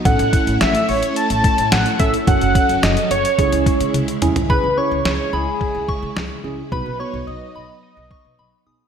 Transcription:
<<
  \new Staff \with { instrumentName = "Synth bell" } { \time 4/4 \key cis \minor \tempo 4 = 108 r1 | r1 | b''8 cis'''8. r16 b''16 r8. cis'''16 r4 r16 | b''8 cis'''8. r16 b''16 r8. cis'''16 r16 b''16 r16 dis'''16 r16 | }
  \new Staff \with { instrumentName = "Analog synth lead" } { \time 4/4 \key cis \minor fis''4 e''8 cis''8 a''4 fis''8 e''8 | fis''4 dis''8 cis''4. r4 | b'8 cis''8 cis''8 gis'2 r8 | b'8 cis''8 dis''4 dis''4. r8 | }
  \new Staff \with { instrumentName = "Tine electric piano" } { \time 4/4 \key cis \minor <cis' e' a'>4 r2 r8 <cis' e' a'>8 | <cis' fis' a'>4 r4 <cis' e' gis'>4 r8 <cis' e' gis'>8 | <cis' e' gis'>8 <cis' e' gis'>4 r2 <cis' e' gis'>8 | <b dis' fis'>8 <b dis' fis'>4 r2 <b dis' gis'>8 | }
  \new Staff \with { instrumentName = "String machine" } { \time 4/4 \key cis \minor <a cis' e'>1 | <fis cis' a'>2 <cis gis e'>2 | <cis gis e'>1 | <fis b dis'>1 | }
  \new Staff \with { instrumentName = "Upright bass" } { \clef bass \time 4/4 \key cis \minor a,,16 a,,16 r16 a,,16 a,,16 r16 a,,16 r8 a,,16 r16 a,16 a,,16 r16 a,,16 r16 | fis,,16 fis,,16 r16 fis,,16 fis,,16 r16 fis,,16 r16 cis,16 cis,16 r16 cis16 cis,16 r16 dis,16 r16 | cis,16 cis,16 r16 cis,16 cis,16 r16 cis,16 r8 cis,16 r16 cis16 cis,16 r16 cis,16 r16 | b,,16 b,,16 r16 b,,16 b,,16 r16 b,,16 r8 b,,16 r16 b,16 b,,16 r16 b,,16 r16 | }
  \new DrumStaff \with { instrumentName = "Drums" } \drummode { \time 4/4 <hh bd>16 hh16 <hh bd>16 hh16 <hh sn>16 hh16 hho16 hh16 hh16 hh16 <hh bd>16 hh16 <hh sn>16 hh16 <hh bd>16 hh16 | <hh bd>16 hh16 <hh bd>16 hh16 <hh sn>16 hh16 hh16 hh16 <hh bd>16 hh16 <hh bd>16 hh16 <hh tommh>16 hh16 <hh toml>16 <hh tomfh>16 | bd4 sn4 bd8 bd8 sn4 | bd4 r4 r8 bd8 r4 | }
>>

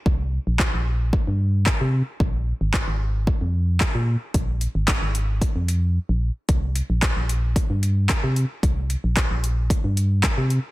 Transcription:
<<
  \new Staff \with { instrumentName = "FM bass" } { \clef bass \time 4/4 \key bes \mixolydian \tempo 4 = 112 c,8. bes,,8 bes,,4 g,4 c8 r16 | bes,,8. aes,,8 aes,,4 f,4 bes,8 r16 | bes,,8. aes,,8 aes,,4 f,4 bes,,8 r16 | c,8. bes,,8 bes,,4 g,4 c8 r16 |
c,8. bes,,8 bes,,4 g,4 c8 r16 | }
  \new DrumStaff \with { instrumentName = "Drums" } \drummode { \time 4/4 bd4 <hc bd>4 bd4 <hc bd>4 | bd4 <hc bd>4 bd4 <hc bd>4 | <hh bd>8 hh8 <hc hh bd>8 hh8 <hh bd>8 hh8 r4 | <hh bd>8 hh8 <hc hh bd>8 hh8 <hh bd>8 hh8 <hc hh bd>8 hh8 |
<hh bd>8 hh8 <hc hh bd>8 hh8 <hh bd>8 hh8 <hc hh bd>8 hh8 | }
>>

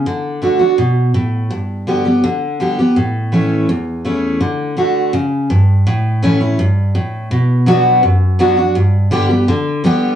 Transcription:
\new Staff \with { instrumentName = "Steel-string acoustic guitar" } { \time 4/4 \key d \major \tempo 4 = 165 << { r4 <d a d' fis'>8 <d' fis'>8 r2 | r4 <d g b g'>8 <b g'>8 r4 <d g b g'>8 <b g'>8 | r4 <e a cis' e'>4 r4 <e a cis' e'>4 | r4 <d a d' fis'>4 r2 |
r4 <e a cis' e'>8 <cis' e'>8 r2 | r4 <fis b d' fis'>4 r4 <fis b d' fis'>8 <d' fis'>8 | r4 <d g b g'>8 <b g'>8 r4 <d g b g'>4 | } \\ { d2 b,4 a,4 | g,2 d2 | a,2 e,2 | d2 cis4 g,4 |
a,2 g,4 a,4 | b,2 fis,2 | g,2 d2 | } >> }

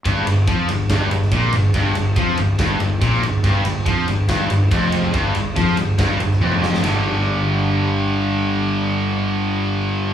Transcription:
<<
  \new Staff \with { instrumentName = "Distorted electric guitar" } { \clef bass \time 4/4 \key f \lydian \tempo 4 = 142 g,8 g,8 f8 g,8 g,8 g,8 bes,8 g,8 | g,8 g,8 f8 g,8 g,8 g,8 bes,8 g,8 | g,8 g,8 f8 g,8 g,8 g,8 f,4 | g,8 g,8 f8 g,8 g,8 g,8 f,4 |
<g, d g>1~ | <g, d g>1 | }
  \new Staff \with { instrumentName = "Distorted electric guitar" } { \clef bass \time 4/4 \key f \lydian g,8 g,8 f8 g,8 g,8 g,8 bes,8 g,8 | g,8 g,8 f8 g,8 g,8 g,8 bes,8 g,8 | g,8 g,8 f8 g,8 g,8 g,8 f,4 | g,8 g,8 f8 g,8 g,8 g,8 f,4 |
<g, d g>1~ | <g, d g>1 | }
  \new Staff \with { instrumentName = "Overdriven electric guitar" } { \clef bass \time 4/4 \key f \lydian g,8 g,8 f8 g,8 g,8 g,8 bes,8 g,8 | g,8 g,8 f8 g,8 g,8 g,8 bes,8 g,8 | g,8 g,8 f8 g,8 g,8 g,8 f,4 | g,8 g,8 f8 g,8 g,8 g,8 f,4 |
<g, d g>1~ | <g, d g>1 | }
  \new Staff \with { instrumentName = "Fingered electric bass" } { \clef bass \time 4/4 \key f \lydian g,,8 g,,8 f,8 g,,8 g,,8 g,,8 bes,,8 g,,8 | g,,8 g,,8 f,8 g,,8 g,,8 g,,8 bes,,8 g,,8 | g,,8 g,,8 f,8 g,,8 g,,8 g,,8 f,,4 | g,,8 g,,8 f,8 g,,8 g,,8 g,,8 f,,4 |
g,,1~ | g,,1 | }
  \new DrumStaff \with { instrumentName = "Drums" } \drummode { \time 4/4 <bd cymr>8 cymr8 <bd cymr>8 cymr8 <bd cymr sn>8 cymr16 sn16 <bd cymr>8 cymr8 | <bd cymr>8 cymr8 <bd cymr>8 cymr8 <bd cymr sn>8 cymr8 <bd cymr>8 cymr8 | <bd cymr>8 cymr8 <bd cymr>8 cymr8 <bd cymr sn>8 cymr8 <bd cymr>8 cymr8 | <bd cymr>8 cymr8 <bd cymr>8 cymr8 <bd cymr sn>8 cymr16 sn16 tommh16 toml16 sn16 sn16 |
<rb sn>4 r4 r4 r4 | r4 r4 r4 r4 | }
>>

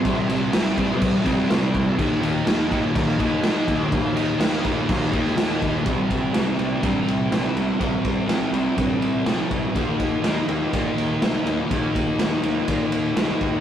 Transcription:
<<
  \new Staff \with { instrumentName = "Distorted electric guitar" } { \time 4/4 \key c \minor \tempo 4 = 123 <c g c'>8 <g c'>8 <c g c'>8 <g c'>4 <g c'>8 <c g c'>4 | <ees bes ees'>8 <bes ees'>8 <ees bes ees'>8 <bes ees'>4 <bes ees'>8 <ees bes ees'>4 | <ees bes ees'>8 <bes ees'>8 <ees bes ees'>8 <bes ees'>4 <bes ees'>8 <ees bes ees'>4 | <c g c'>4 <c g c'>8 <g c'>8 <c g c'>4 <c g c'>4 |
<c g c'>4 <c g c'>8 <g c'>8 <c g c'>4 <c g c'>4 | <ees bes ees'>4 <ees bes ees'>8 <bes ees'>8 <ees bes ees'>4 <ees bes ees'>4 | <ees bes ees'>4 <ees bes ees'>8 <bes ees'>8 <ees bes ees'>4 <ees bes ees'>4 | }
  \new Staff \with { instrumentName = "Picked electric bass" } { \clef bass \time 4/4 \key c \minor c,4 c,8 c,8 c,8 c,8 c,8 c,8 | ees,4 ees,8 ees,8 ees,8 ees,8 ees,8 ees,8 | ees,4 ees,8 ees,8 ees,8 ees,8 ees,8 ees,8 | c,8 c,8 c,8 c,8 g,8 c,8 bes,,8 c,8 |
c,8 c,8 c,8 c,8 g,8 c,8 bes,,8 c,8 | ees,8 ees,8 ees,8 ees,8 bes,8 ees,8 c,8 ees,8 | ees,8 ees,8 ees,8 ees,8 bes,8 ees,8 c,8 ees,8 | }
  \new DrumStaff \with { instrumentName = "Drums" } \drummode { \time 4/4 <cymc bd>8 cymc8 <cymc sn>8 <cymc bd>8 <cymc bd>8 <cymc bd sn>16 sn16 <cymc sn>8 <cymc bd>8 | <cymc bd>8 cymc8 <cymc sn>8 <cymc bd>8 <cymc bd>8 <cymc bd>8 <cymc sn>8 <cymc bd>8 | <cymc bd>8 cymc8 <cymc sn>8 <cymc bd>8 <cymc bd>8 <cymc bd>16 sn16 <cymc sn>8 <cymc bd>8 | <bd cymr>8 <bd cymr>8 <cymr sn>8 cymr8 <bd cymr>8 cymr8 <cymr sn>8 cymr8 |
<bd cymr>8 <bd cymr>8 <cymr sn>8 cymr8 <bd cymr>8 cymr8 <cymr sn>8 <bd cymr>8 | <bd cymr>8 <bd cymr>8 <cymr sn>8 cymr8 <bd cymr>8 cymr8 <cymr sn>8 cymr8 | <bd cymr>8 <bd cymr>8 <cymr sn>8 cymr8 <bd cymr>8 cymr8 <cymr sn>8 <bd cymr>8 | }
>>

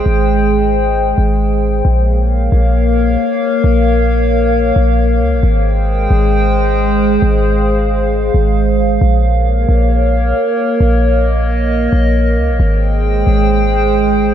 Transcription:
<<
  \new Staff \with { instrumentName = "Ambient pad" } { \time 4/4 \key bes \dorian \tempo 4 = 134 << { g''1 | f''1~ | f''1 | g''1 |
f''1~ | f''1 | ees''1 | g''1 | } \\ { <aes aes' c''>1 | <bes bes' des''>1~ | <bes bes' des''>1 | <aes aes' c''>1~ |
<aes aes' c''>1 | <bes bes' des''>1~ | <bes bes' des''>1 | <aes aes' c''>1 | } >> }
  \new Staff \with { instrumentName = "808-style bass" } { \clef bass \time 4/4 \key bes \dorian aes,,2~ aes,,8 aes,,4. | bes,,4. bes,,4. r4 | bes,,2~ bes,,8 bes,,4 des,16 bes,,16 | aes,,4. aes,,2~ aes,,8 |
aes,,2~ aes,,8 aes,,4. | bes,,4. bes,,4. r4 | bes,,2~ bes,,8 bes,,4 des,16 bes,,16 | aes,,4. aes,,2~ aes,,8 | }
>>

